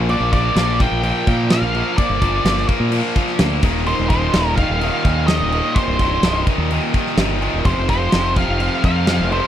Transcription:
Already playing: A#1
0.09 A#2 F3 A#3 D5, crash
0.20 A#1
0.33 A#2 F3 A#3 D5, kick, crash
0.55 A#1 A#2 F3 A#3, snare, crash
0.79 A#2 F3 A#3 G5, kick, crash
0.92 A#1
1.03 A#2 F3 A#3, crash
1.27 A#2 F3 A#3, kick, crash
1.50 A#2 F3 A#3 F5, snare, crash
1.62 A#1
1.74 A#2 F3 A#3, crash
1.97 A#2 F3 A#3 D5, kick, crash
2.10 G1
2.21 A#2 F3 A#3, kick, crash
2.44 G1 A#2 F3 A#3, snare, crash
2.57 snare
2.68 A#2 F3 A#3, kick, crash
2.80 A#2
2.92 A#2 F3 A#3, crash
3.16 A#2 F3 A#3, kick, crash
3.27 snare
3.39 D2 A#2 F3 A#3, snare, crash
3.63 D#1 D#2 A#2 D#3, kick, crash
3.86 D#2 A#2 D#3 C5, crash
3.99 D#1
4.10 D#2 A#2 D#3 C5, kick, crash
4.33 D#1 D#2 A#2 D#3, snare, crash
4.56 D#2 A#2 D#3 F5, kick, crash
4.69 D#1
4.80 D#2 A#2 D#3, crash
5.04 D#2 A#2 D#3, kick, crash
5.27 D#2 A#2 D#3 D#5, snare, crash
5.40 D#1
5.52 D#2 A#2 D#3, crash
5.74 D#2 A#2 D#3 C5, kick, crash
5.88 C1
5.99 D#2 A#2 D#3, kick, crash
6.22 C1 D#2 A#2 D#3, snare, crash
6.47 D#2 A#2 D#3, kick, crash
6.58 D#2
6.71 D#2 A#2 D#3, crash
6.94 D#2 A#2 D#3, kick, crash
7.06 snare
7.17 G1 D#2 A#2 D#3, snare, crash
7.40 D#2 A#2 D#3, crash
7.54 D#1
7.64 F1 F2 C3 F3 C5, kick, crash
7.78 F1
7.88 F2 C3 F3 C5, kick, crash
8.12 F1 F2 C3 F3, snare, crash
8.36 F2 C3 F3 F5, kick, crash
8.48 F1
8.60 F2 C3 F3, crash
8.84 F2 C3 F3 F5, kick, crash
9.07 F2 C3 F3, snare, crash
9.20 F1
9.31 F2 C3 F3 C5, crash

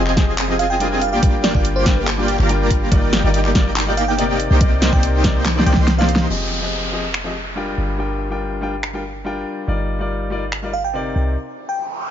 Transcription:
Already playing: F1 F3 C4 F4 G4 G#4 D#5 G#5
0.07 clap
0.16 F3 C4 G4 G#4 D#5, kick, snare, closed hi-hat
0.38 clap, closed hi-hat
0.48 F3 C4 G4 G#4 D#5
0.59 F5, closed hi-hat
0.70 G5
0.79 G3 D4 F4 A#4 G5, closed hi-hat
1.01 F5, closed hi-hat
1.12 G1 A#3 F4 G4 D5 F5 G5
1.21 G3 D4 F4 A#4 G5, kick, closed hi-hat
1.44 D5, snare, closed hi-hat
1.53 G1 G3 A#3 D4 F4 G4 A#4 D5 G5, kick
1.65 closed hi-hat
1.76 C5
1.85 G3 D4 F4 A#4 G5, kick, snare, closed hi-hat
2.07 clap, closed hi-hat
2.17 G3 D4 F4 A#4 G5
2.28 closed hi-hat
2.39 G1 A#3 F4 G4 D5 A#5, clap
2.48 G3 D4 F4 A#4 G5, closed hi-hat
2.71 kick, closed hi-hat
2.91 G1 G3 A#3 D#4 F4 G4 A#4 D5 G5, kick, closed hi-hat
3.13 snare, closed hi-hat
3.23 G1 G3 A#3 D#4 F4 G4 A#4 D5 G5
3.34 closed hi-hat
3.45 clap
3.54 G3 D#4 F4 A#4 D5, kick, snare, closed hi-hat
3.76 clap, closed hi-hat
3.86 G3 D#4 F4 A#4 D5
3.97 F5, closed hi-hat
4.08 G5
4.17 C3 C4 D#4 A#4 D5, closed hi-hat
4.40 closed hi-hat
4.50 C2 A#3 D#4 G4 C5 G5
4.59 C3 C4 D#4 A#4 D5, kick, closed hi-hat
4.82 snare, closed hi-hat
4.92 C2 C3 A#3 C4 D#4 G4 A#4 C5 D5 G5, kick
5.03 closed hi-hat
5.23 C3 C4 D#4 A#4 D5, kick, snare, closed hi-hat
5.45 snare, clap, closed hi-hat
5.55 C3 C4 D#4 A#4 D5
5.59 snare
5.65 C2 C3 A#3 C4 D#4 G4 A#4 C5 D5 G5, closed hi-hat
5.73 C2 A#3 D#4 G4 C5 C6, snare
5.88 snare, closed hi-hat
5.97 C3 C4 D#4 A#4 D5 F5
6.02 snare
6.09 closed hi-hat
6.16 snare
6.29 F1 F3 C4 G4 G#4 D#5, downlifter
6.60 F3 C4 G4 G#4 D#5
6.92 F3 C4 G4 G#4 D#5
7.14 finger snap
7.24 F3 C4 G4 G#4 D#5
7.55 G3 D4 F4 A#4 G5
7.78 G1
7.98 G3 D4 F4 A#4 G5
8.30 G3 D4 F4 A#4 G5
8.61 G3 D4 F4 A#4 G5
8.83 finger snap
8.93 G3 D4 F4 A#4 G5
9.24 G3 D4 F4 A#4 G5
9.67 G1 G3 D#4 F4 A#4 D5
9.99 G3 D#4 F4 A#4 D5
10.30 G3 D#4 F4 A#4 D5
10.52 finger snap
10.62 G3 D#4 F4 A#4 D5
10.73 F5
10.84 G5
10.93 C3 C4 D#4 A#4 D5
11.15 C2
11.37 noise sweep
11.69 G5

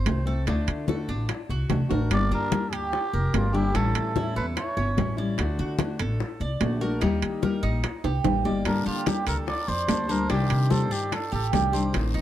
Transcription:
Already playing: C5
0.05 C2 D#3 A3 C4, high bongo, low bongo, high conga, high timbale, low timbale
0.25 A3 C4 A4, high bongo, high conga
0.46 D2 D3 A3 D4 F#4, high bongo, high conga, high timbale
0.67 D3, high bongo, high conga, high timbale
0.87 D3 A3 D4 F#4 A4, high bongo, high conga, low timbale
1.08 A1 D4, high conga
1.28 muted nylon-string guitar stroke, high bongo, high conga, high timbale
1.49 C2 F#4, high bongo, high conga
1.68 C2 D3 A3 D4 F#4, high bongo, low bongo, high conga, high timbale, low timbale
1.89 A1 A3 D4 F#4 A#4, high bongo, high conga, high timbale
2.10 G1 D3 G3 A#3 D4 G4 D5, high bongo, high conga, high timbale
2.31 G2 D4 A#4, high bongo, high conga
2.50 G3 A#3 D4 G4, high bongo, high conga, high timbale, low timbale
2.72 D2 G4, high conga, high timbale
2.91 muted nylon-string guitar stroke, high bongo, high conga
3.13 F1 A#4, high bongo, high conga
3.33 G1 G3 A#3 D4 F4 G4, high bongo, low bongo, high conga, high timbale, low timbale
3.53 G3 A#3 D4 E4 G4, high bongo, high conga
3.73 A1 E3 G3 A3 C#4 E4 A4, high bongo, high conga, high timbale
3.95 A2, high bongo, high conga, high timbale
4.15 E3 G3 C#4 E4, high bongo, high conga, low timbale
4.36 E2 A3 B4, high conga
4.55 C#5, muted nylon-string guitar stroke, high bongo, high conga, high timbale
4.77 G1 C#4, high bongo, high conga
4.97 A1 E3 G3 C#4 E4, high bongo, low bongo, high conga, high timbale, low timbale
5.17 G3 C#4 E4 D5, high bongo
5.38 D2 D3 A3 D4 F#4, high bongo, high conga, high timbale
5.59 D3 F#4, high bongo, high conga
5.78 D3 A3 D4 F#4, high bongo, high conga, high timbale, low timbale
5.99 A1 A4, high conga, high timbale
6.20 muted nylon-string guitar stroke, high bongo, high conga
6.40 C2 D5, high bongo, high conga
6.61 A#1 D3 A3 D4 F#4, high bongo, low bongo, high conga, high timbale, low timbale
6.81 A3 D4 F#4 A#4, high bongo, high conga
7.01 D#2 D#3 G3 A#3 D#4 G4, high bongo, high conga, high timbale
7.22 D#3, high bongo, high conga, high timbale
7.42 G3 A#3 D#4 G4 A#4, high bongo, high conga, low timbale
7.63 A#1 D#4, high conga
7.84 muted nylon-string guitar stroke, high bongo, high conga, high timbale
8.04 C2 G4, high bongo, high conga, high timbale
8.24 A1 G3 A#3 D#4 G4, high bongo, low bongo, high conga, high timbale
8.45 G1 G3 A#3 D#4 G4 D5, high bongo, low timbale
8.65 G2 D3 G3 A#3 D4 A4 A#4, high bongo, high conga, high timbale, long guiro
8.86 G3 F4 G4, high bongo, high conga
9.05 G3 A#3 D4 G4 A4, high bongo, high conga, high timbale, low timbale, short guiro
9.27 D2 A4 A#4, high conga, high timbale, short guiro
9.46 D5, muted nylon-string guitar stroke, high bongo, high conga, long guiro
9.68 F2 C5 D5, high bongo, high conga
9.87 D2 G3 A#3 D4 A4, high bongo, low bongo, high conga, high timbale, low timbale, short guiro
10.08 G3 A#3 D4 A4 A#4 C5, high bongo, high conga, short guiro
10.28 C2 C3 D#3 G3 D4 G4, high bongo, high conga, high timbale, long guiro
10.50 C3, high bongo, high conga, high timbale
10.69 D#3 G3 D4 G4 A4 C5, high bongo, high conga, low timbale, short guiro
10.91 G2 D4 G4, high conga, short guiro
11.12 A4, muted nylon-string guitar stroke, high bongo, high conga, high timbale, long guiro
11.32 A1 G4 A4, high bongo, high conga
11.51 C2 D#3 G3 D4 G4, high bongo, low bongo, high conga, high timbale, low timbale, short guiro
11.72 D#3 G3 D4 G4 C5, high bongo, short guiro
11.93 A1 D#3 A3 C4, high bongo, high conga, high timbale, long guiro
12.14 A2 D#4, high bongo, high conga

